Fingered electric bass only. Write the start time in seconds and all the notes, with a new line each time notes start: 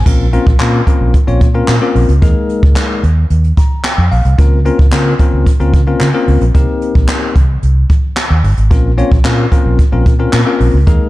0.06 A#1
0.47 A#1
0.60 A#2
1.01 A#1
1.28 A#1
1.41 A#2
1.68 A#2
1.95 A#1
2.09 C#2
2.22 D#2
2.63 C#2
3.03 D#2
3.30 D#2
3.98 F2
4.12 A#1
4.25 C2
4.39 C#2
4.79 C#2
4.93 C#3
5.33 C#2
5.60 C#2
5.74 C#3
6.01 C#3
6.28 C#2
6.41 A#1
6.55 C2
6.95 A#1
7.36 C2
7.63 C2
8.30 D#2
8.44 G1
8.57 G#1
8.71 A#1
9.12 A#1
9.25 A#2
9.65 A#1
9.93 A#1
10.06 A#2
10.33 A#2
10.60 A#1
10.74 C#2
10.87 D#2